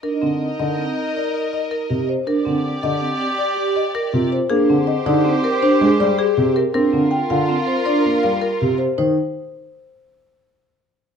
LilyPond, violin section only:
\new Staff \with { instrumentName = "Violin section" } { \time 6/4 \key c \minor \tempo 4 = 161 <bes' ees''>1~ <bes' ees''>4. r8 | <g' d''>1~ <g' d''>4. r8 | <g' c''>1~ <g' c''>4. r8 | <f' bes'>1~ <f' bes'>4. r8 |
r1. | }